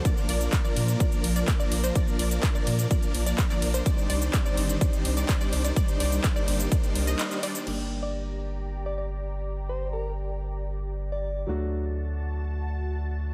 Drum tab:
CC |----------------|----------------|----------------|----------------|
RD |--x---x---x---x-|--x---x---x---x-|--x---x---x---x-|--x---x---x---x-|
HH |x-oxx-oxxxoxx-ox|x-oxx-oxxxoxx-ox|x-oxx-oxxxoxx-ox|xxoxx-oxxxoxxxox|
SH |xx-xxx-xxx-xxx-x|xx-xxx-xxx-xxx-x|xx-xxx-xxx-xxx-x|xx-xxx-xxx-xxx-x|
CP |----x-------x---|----x-------xx--|----x-------x---|----x-------xx--|
BD |o---o---o---o---|o---o---o---o---|o---o---o---o---|o---o---o-------|

CC |x---------------|----------------|----------------|
RD |----------------|----------------|----------------|
HH |----------------|----------------|----------------|
SH |----------------|----------------|----------------|
CP |----------------|----------------|----------------|
BD |----------------|----------------|----------------|